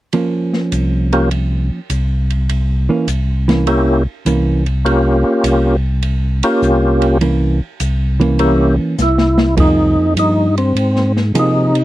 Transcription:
0.13 1.79 F3 soft
0.13 1.79 A#3 soft
0.13 1.79 C#4 soft
0.13 ride soft
0.53 snare soft
0.72 1.71 C2 medium
0.72 hi-hat pedal soft
0.72 ride soft
1.12 1.29 A#3 soft
1.12 1.29 C#4 soft
1.12 1.30 F4 soft
1.12 1.29 G4 medium
1.12 ride soft
1.31 ride soft
1.90 2.89 C2 medium
1.90 hi-hat pedal soft
1.90 ride soft
2.30 ride soft
2.49 ride soft
2.89 3.06 E3 soft
2.89 3.06 A#3 medium
2.89 3.07 C#4 medium
3.07 4.07 C2 medium
3.07 hi-hat pedal soft
3.07 ride soft
3.48 3.65 E3 medium
3.48 3.66 A#3 medium
3.48 3.66 C#4 medium
3.48 snare soft
3.48 ride soft
3.67 4.03 A#3 soft
3.67 4.03 C#4 soft
3.67 4.03 E4 soft
3.67 4.03 G4 medium
3.67 ride soft
4.25 5.25 C2 medium
4.25 4.62 E3 soft
4.25 4.63 A#3 soft
4.25 4.63 C#4 soft
4.25 hi-hat pedal soft
4.25 ride soft
4.66 ride soft
4.85 5.76 A#3 soft
4.85 5.76 C#4 soft
4.85 5.77 F4 soft
4.85 5.77 G4 soft
4.85 ride soft
5.43 6.43 C2 medium
5.43 hi-hat pedal medium
5.43 ride medium
6.02 ride soft
6.43 7.18 A#3 medium
6.43 7.18 C#4 medium
6.43 7.18 F4 medium
6.43 7.18 G4 medium
6.43 ride soft
6.62 7.61 C2 medium
6.62 hi-hat pedal soft
7.02 ride soft
7.21 7.57 E3 soft
7.21 7.58 A#3 soft
7.21 7.58 C#4 soft
7.21 ride soft
7.80 8.79 C2 medium
7.80 hi-hat pedal medium
7.80 ride medium
8.20 8.94 E3 medium
8.20 8.95 A#3 medium
8.20 8.95 C#4 medium
8.20 ride soft
8.39 8.76 A#3 soft
8.39 8.76 C#4 soft
8.39 8.76 E4 soft
8.39 8.76 G4 medium
8.39 ride soft
8.98 9.97 C2 medium
8.98 9.55 E4 medium
8.98 snare soft
8.98 hi-hat pedal medium
9.18 snare soft
9.38 snare medium
9.57 10.15 F2 medium
9.57 10.48 F3 soft
9.57 10.48 A#3 soft
9.57 10.49 D#4 soft
9.57 10.14 D#4 medium
9.57 10.49 G#4 soft
9.57 kick medium
9.57 ride medium
10.15 10.73 G2 medium
10.15 hi-hat pedal soft
10.15 ride medium
10.19 10.55 D#4 medium
10.57 11.12 C4 medium
10.57 ride soft
10.75 11.32 G#2 medium
10.75 ride soft
10.96 snare soft
11.17 snare soft
11.34 11.84 C3 medium
11.34 11.71 F3 soft
11.34 11.71 A#3 soft
11.34 11.71 D#4 soft
11.34 11.71 G#4 soft
11.34 hi-hat pedal soft
11.34 ride medium
11.39 11.84 D#4 medium
11.75 ride soft

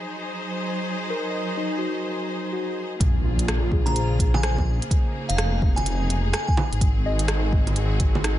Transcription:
0.00 2.97 F#3 medium
0.00 2.97 D#4 medium
0.00 2.97 G#4 medium
0.00 2.97 C5 medium
0.00 3.02 C5 medium
1.10 1.63 A#4 medium
1.30 1.77 D#5 soft
1.57 2.11 D#4 medium
1.78 2.25 F#4 soft
2.52 3.06 F#4 medium
3.00 4.80 A#1 loud
3.00 6.78 C#3 medium
3.00 6.78 A#3 medium
3.00 4.89 F4 medium
3.00 8.39 G#4 medium
3.00 kick loud
3.00 closed hi-hat medium
3.00 impact medium
3.24 3.77 F4 medium
3.39 closed hi-hat medium
3.48 cross-stick loud
3.48 closed hi-hat medium
3.72 4.25 G#4 medium
3.72 kick loud
3.86 4.11 A#5 medium
3.86 closed hi-hat soft
3.86 low bongo soft
3.92 4.39 C5 medium
3.96 closed hi-hat medium
4.19 kick loud
4.19 closed hi-hat medium
4.34 4.59 G#5 medium
4.34 low bongo medium
4.43 4.97 C5 medium
4.43 cross-stick loud
4.43 closed hi-hat medium
4.58 kick medium
4.58 low bongo soft
4.82 closed hi-hat soft
4.91 6.79 D#4 medium
4.91 kick loud
4.91 closed hi-hat medium
5.29 6.33 F1 medium
5.29 5.35 F5 medium
5.29 closed hi-hat medium
5.37 5.47 F5 medium
5.37 cross-stick loud
5.37 closed hi-hat medium
5.62 kick loud
5.76 6.01 G#5 medium
5.76 closed hi-hat soft
5.76 low bongo soft
5.86 closed hi-hat medium
6.10 closed hi-hat medium
6.33 6.43 G#5 medium
6.33 cross-stick loud
6.33 closed hi-hat medium
6.47 6.54 G#5 medium
6.47 kick loud
6.57 low bongo medium
6.72 6.81 G#1 loud
6.72 closed hi-hat soft
6.81 8.39 G#1 loud
6.81 8.39 D#3 medium
6.81 8.39 C4 medium
6.81 8.39 F#4 medium
6.81 kick loud
6.81 closed hi-hat medium
7.06 7.59 D#5 medium
7.19 closed hi-hat medium
7.28 cross-stick loud
7.28 closed hi-hat medium
7.53 kick loud
7.67 closed hi-hat soft
7.67 low bongo soft
7.76 8.30 G#4 medium
7.76 closed hi-hat medium
8.00 kick loud
8.00 closed hi-hat medium
8.15 low bongo medium
8.24 8.39 D#4 medium
8.24 cross-stick loud
8.24 closed hi-hat medium

